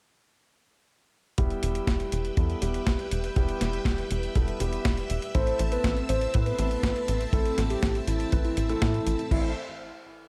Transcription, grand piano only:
1.38 2.34 G3 medium
1.38 2.34 B3 medium
1.38 2.34 E4 medium
1.38 2.34 G4 loud
2.37 2.59 G3 medium
2.37 2.59 B3 medium
2.37 2.59 E4 medium
2.37 2.59 A4 medium
2.62 3.33 G3 medium
2.62 3.33 B3 medium
2.62 3.33 E4 medium
2.62 3.33 G4 medium
3.36 4.33 G3 medium
3.36 4.33 B3 medium
3.36 4.33 E4 medium
3.36 4.33 G4 medium
4.35 4.57 G3 medium
4.35 4.57 B3 medium
4.35 4.57 E4 medium
4.35 4.57 A4 medium
4.60 5.32 G3 medium
4.60 5.32 B3 medium
4.60 5.32 E4 medium
4.60 5.32 G4 medium
5.35 6.31 A3 medium
5.35 6.31 C4 medium
5.35 6.31 E4 medium
5.35 6.31 A4 loud
6.34 6.56 A3 medium
6.34 6.56 C4 medium
6.34 6.56 E4 medium
6.34 6.56 B4 medium
6.59 7.30 A3 medium
6.59 7.30 C4 medium
6.59 7.30 E4 medium
6.59 7.30 A4 medium
7.33 8.29 A3 medium
7.33 8.29 C4 medium
7.33 8.29 E4 medium
7.33 8.29 A4 loud
8.32 8.54 A3 medium
8.32 8.54 C4 medium
8.32 8.54 E4 medium
8.32 8.54 B4 medium
8.69 9.28 A3 loud
8.69 9.28 C4 medium
8.69 9.28 E4 medium
8.69 9.28 A4 loud
9.31 9.50 A3 medium
9.31 9.50 C4 medium
9.31 9.50 E4 medium
9.31 9.50 A4 medium

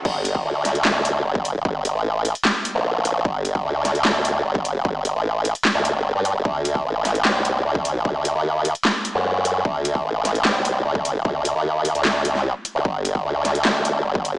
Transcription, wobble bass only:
0.05 0.43 G1 medium
0.45 0.63 D2 loud
0.65 0.83 D2 medium
0.85 1.23 D2 medium
1.25 1.63 G1 medium
1.65 1.94 G1 medium
1.95 2.34 A1 loud
2.75 3.23 A#1 loud
3.25 3.63 G1 loud
3.65 3.83 D2 loud
3.85 4.03 D2 loud
4.05 4.43 D2 loud
4.45 4.83 G1 loud
4.85 5.13 G1 loud
5.15 5.54 A1 loud
5.75 5.94 D2 loud
5.95 6.14 G1 loud
6.15 6.34 G2 loud
6.35 6.43 G1 medium
6.45 6.83 D2 medium
6.85 7.03 A1 loud
7.05 7.24 A1 loud
7.25 7.63 C2 loud
7.65 8.03 D2 loud
8.05 8.34 D2 loud
8.35 8.74 D#2 loud
9.15 9.63 F#2 loud
9.65 10.03 D2 loud
10.05 10.23 A1 loud
10.25 10.43 A1 loud
10.45 10.83 C2 medium
10.85 11.23 D2 loud
11.25 11.54 D2 loud
11.55 11.94 D#2 loud
11.95 12.36 D2 loud
12.36 12.54 C#2 loud
12.75 12.83 D2 medium
12.85 13.23 G1 loud
13.25 13.43 D2 medium
13.45 13.63 D2 loud
13.65 14.03 D2 medium
14.05 14.38 G1 loud

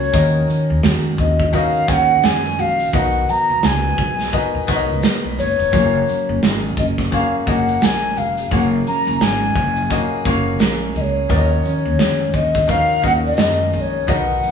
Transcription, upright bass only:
0.13 0.42 D#2 loud
0.70 0.81 D#2 loud
0.84 1.13 F2 loud
1.18 1.64 D#2 medium
1.89 2.17 D#2 medium
2.24 2.60 F#2 loud
2.59 2.87 A#1 loud
2.94 3.22 B1 loud
3.50 3.61 B1 loud
3.64 3.92 C#2 loud
3.98 4.27 B1 loud
4.55 4.66 B2 medium
4.68 4.85 B1 medium
4.89 5.01 C#2 medium
5.24 5.35 B1 medium
5.38 5.55 F#1 medium
5.59 5.70 F1 medium
5.73 6.01 F#1 loud
6.29 6.40 F#1 loud
6.43 6.71 G#1 loud
6.77 7.23 F#1 medium
7.47 7.76 F#1 loud
7.82 8.10 A#1 loud
8.17 8.45 F1 medium
8.51 8.80 F#1 loud
9.07 9.18 F#1 loud
9.20 9.49 G#1 loud
9.56 10.01 F#1 medium
10.25 10.60 F#1 loud
10.60 10.89 A#1 loud
10.95 11.24 C#2 medium
11.30 11.58 D#2 loud
11.85 11.97 D#2 loud
12.00 12.28 F2 loud
12.34 12.80 D#2 medium
13.04 13.32 D#2 medium
13.38 13.75 F#2 loud
13.73 14.02 A#1 medium
14.08 14.37 B1 loud

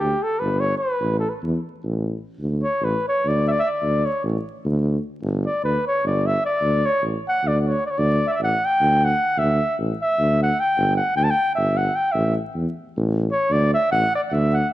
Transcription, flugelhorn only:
0.00 0.25 G4 medium
0.23 0.41 A4 medium
0.39 0.62 B4 medium
0.60 0.77 C#5 loud
0.77 1.18 B4 medium
1.20 1.31 A4 medium
1.29 1.32 B4 medium
2.63 2.86 C#5 medium
2.84 3.07 B4 medium
3.08 3.30 C#5 medium
3.28 3.47 D5 medium
3.47 3.61 D5 medium
3.47 3.50 E5 medium
3.59 3.68 E5 loud
3.66 4.07 D5 medium
4.05 4.24 C#5 medium
5.46 5.62 D5 medium
5.64 5.85 B4 medium
5.87 6.04 C#5 medium
6.07 6.28 D5 medium
6.26 6.44 E5 medium
6.45 6.87 D5 medium
6.85 7.03 C#5 medium
7.28 7.49 F#5 loud
7.47 7.61 D5 medium
7.61 7.69 D5 soft
7.67 7.83 C#5 medium
7.86 7.92 D5 medium
7.91 8.00 C#5 medium
7.98 8.29 D5 medium
8.27 8.35 D5 medium
8.27 8.31 E5 medium
8.33 8.42 E5 medium
8.43 8.67 F#5 loud
8.65 9.06 G5 medium
9.05 9.40 F#5 loud
9.39 9.79 E5 medium
10.02 10.38 E5 medium
10.43 10.61 F#5 medium
10.60 10.96 G5 medium
10.96 11.14 F#5 medium
11.16 11.25 G5 medium
11.24 11.32 A5 medium
11.30 11.54 G5 medium
11.55 11.79 E5 medium
11.77 11.97 F#5 medium
11.96 12.13 G5 medium
12.12 12.35 E5 medium
13.32 13.54 C#5 medium
13.52 13.73 D5 medium
13.74 13.90 E5 loud
13.92 14.12 F#5 loud
14.15 14.21 D5 medium
14.29 14.55 E5 medium
14.29 14.33 F#5 medium
14.54 14.71 F#5 medium

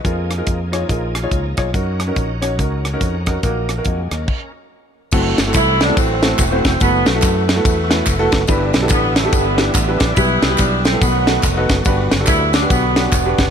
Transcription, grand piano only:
0.00 0.29 B4 soft
0.00 0.29 D#5 medium
0.04 0.29 D#4 medium
0.04 0.29 F4 medium
0.04 0.29 G#4 medium
0.04 0.29 A#4 medium
0.38 0.58 D#4 medium
0.38 0.58 F4 medium
0.38 0.58 G#4 medium
0.38 0.58 A#4 medium
0.72 0.83 D#4 medium
0.72 0.83 F4 medium
0.72 0.83 G#4 medium
0.72 0.83 C#5 medium
0.89 1.13 D#4 medium
0.89 1.13 F4 medium
0.89 1.14 G#4 medium
0.89 1.14 A#4 medium
1.23 1.43 D#4 medium
1.23 1.43 F4 medium
1.23 1.43 G#4 medium
1.23 1.43 C#5 medium
1.57 1.68 D#4 medium
1.57 1.68 F4 medium
1.57 1.68 G#4 medium
1.57 1.68 C#5 medium
1.73 1.98 C#4 medium
1.73 1.98 D#4 medium
1.73 1.98 F#4 medium
1.73 1.98 A#4 medium
2.07 2.27 C#4 medium
2.07 2.28 D#4 medium
2.07 2.28 F#4 medium
2.07 2.28 A#4 medium
2.41 2.52 C#4 medium
2.41 2.52 D#4 medium
2.41 2.52 F#4 medium
2.41 2.52 C#5 medium
2.59 2.83 C#4 medium
2.59 2.83 D#4 medium
2.59 2.84 F#4 medium
2.59 2.83 A#4 medium
2.93 3.13 C#4 medium
2.93 3.13 D#4 medium
2.93 3.13 F#4 medium
2.93 3.13 A#4 medium
3.26 3.37 C#4 medium
3.26 3.37 D#4 medium
3.26 3.37 F#4 medium
3.26 3.38 A#4 medium
3.43 4.08 A#2 medium
3.43 3.68 A#3 medium
3.43 3.68 D#4 medium
3.43 3.68 F#4 medium
3.43 3.68 A#4 medium
3.78 3.97 A#3 medium
3.78 3.97 D#4 medium
3.78 3.97 F#4 medium
3.78 3.98 A#4 medium
3.87 4.11 D#5 soft
3.87 4.11 F#5 medium
4.12 4.52 D#5 medium
5.12 5.37 A3 loud
5.12 5.37 C4 medium
5.12 5.37 E4 medium
5.12 5.37 F#4 medium
5.12 5.37 A4 medium
5.46 5.74 A3 medium
5.46 5.74 C4 medium
5.46 5.74 E4 medium
5.46 5.74 F#4 medium
5.46 5.75 A4 medium
5.88 6.08 A3 medium
5.88 6.08 C4 medium
5.88 6.08 E4 medium
5.88 6.08 F#4 medium
5.88 6.08 A4 medium
6.22 6.38 A3 medium
6.22 6.38 C4 medium
6.22 6.38 E4 medium
6.22 6.38 F#4 medium
6.22 6.38 A4 medium
6.51 6.71 A3 medium
6.51 6.72 C4 medium
6.51 6.72 E4 medium
6.51 6.72 F#4 medium
6.51 6.72 C5 medium
6.80 7.05 A3 medium
6.80 7.05 B3 medium
6.80 7.05 E4 medium
6.80 7.05 F#4 medium
6.80 7.05 A4 medium
7.15 7.42 A3 medium
7.15 7.42 B3 medium
7.15 7.42 E4 medium
7.15 7.43 F#4 medium
7.15 7.43 A4 medium
7.56 7.76 A3 medium
7.56 7.76 B3 medium
7.56 7.76 E4 medium
7.56 7.76 F#4 medium
7.56 7.76 A4 medium
7.89 8.05 A3 medium
7.89 8.06 B3 medium
7.89 8.06 E4 medium
7.89 8.06 F#4 medium
7.89 8.06 B4 medium
8.19 8.39 A3 medium
8.19 8.39 B3 medium
8.19 8.39 E4 medium
8.19 8.40 F#4 medium
8.19 8.40 A4 loud
8.48 9.12 G2 medium
8.48 8.73 B3 medium
8.48 8.73 D4 medium
8.48 8.73 E4 medium
8.48 8.73 G4 medium
8.48 8.73 B4 loud
8.81 9.10 B3 medium
8.81 9.10 D4 medium
8.81 9.10 E4 medium
8.81 9.10 G4 medium
8.81 9.10 A4 medium
9.25 9.44 B3 medium
9.25 9.44 D4 medium
9.25 9.45 E4 medium
9.25 9.44 G4 medium
9.25 9.45 A4 medium
9.57 9.74 B3 medium
9.57 9.74 D4 medium
9.57 9.74 E4 medium
9.57 9.74 G4 medium
9.57 9.74 B4 medium
9.88 10.08 B3 medium
9.88 10.08 D4 medium
9.88 10.08 E4 medium
9.88 10.08 G4 medium
9.88 10.08 B4 medium
10.17 10.81 B2 medium
10.17 10.42 G3 medium
10.17 10.41 B3 medium
10.17 10.42 E4 medium
10.17 10.42 G4 medium
10.17 10.42 B4 medium
10.50 10.78 G3 medium
10.50 10.78 B3 medium
10.50 10.78 E4 medium
10.50 10.78 G4 medium
10.50 10.79 B4 medium
10.92 11.01 G3 medium
10.92 11.01 B3 medium
10.92 11.01 E4 medium
10.92 11.01 G4 medium
10.92 11.01 A4 medium
11.01 11.65 B2 medium
11.27 11.42 B3 medium
11.27 11.43 D#4 medium
11.27 11.43 F#4 medium
11.27 11.43 A4 medium
11.27 11.43 B4 medium
11.57 11.77 B3 medium
11.57 11.77 D#4 medium
11.57 11.77 F#4 medium
11.57 11.77 A4 medium
11.57 11.77 B4 loud
11.86 12.50 G2 medium
11.86 12.10 B3 loud
11.86 12.10 D4 medium
11.86 12.10 F#4 medium
11.86 12.11 G4 medium
11.86 12.11 B4 loud
12.20 12.48 B3 medium
12.20 12.48 D4 medium
12.20 12.48 F#4 medium
12.20 12.48 G4 medium
12.20 12.48 A4 medium
12.62 12.82 B3 medium
12.62 12.82 D4 medium
12.62 12.82 F#4 medium
12.62 12.82 G4 medium
12.62 12.82 B4 medium
12.97 13.12 B3 medium
12.97 13.12 D4 medium
12.97 13.12 F#4 medium
12.97 13.12 G4 medium
12.97 13.12 B4 medium
13.26 13.46 B3 medium
13.26 13.46 D4 medium
13.26 13.46 F#4 medium
13.26 13.46 G4 medium
13.26 13.46 B4 medium

